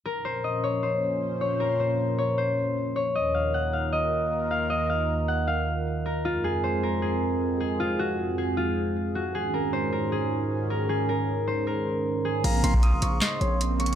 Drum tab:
CC |------------------------------------------------|------------------------------------------------|------------------------------------------------|------------------------------------------------|
HH |------------------------------------------------|------------------------------------------------|------------------------------------------------|------------------------------------------------|
CP |------------------------------------------------|------------------------------------------------|------------------------------------------------|------------------------------------------------|
SD |------------------------------------------------|------------------------------------------------|------------------------------------------------|------------------------------------------------|
BD |------------------------------------------------|------------------------------------------------|------------------------------------------------|------------------------------------------------|

CC |------------------------------------------------|------------------------------------------------|------------------------------------------------|------------------------------------------------|
HH |------------------------------------------------|------------------------------------------------|------------------------------------------------|------------------------------------------------|
CP |------------------------------------------------|------------------------------------------------|------------------------------------------------|------------------------------------------------|
SD |------------------------------------------------|------------------------------------------------|------------------------------------------------|------------------------------------------------|
BD |------------------------------------------------|------------------------------------------------|------------------------------------------------|------------------------------------------------|

CC |x-----------------------------------------------|
HH |x-----x-----x-----x-----x-----x-----x-----x-x---|
CP |------------------------x-----------------------|
SD |------------------------o-----------------------|
BD |---------o--------------------------------------|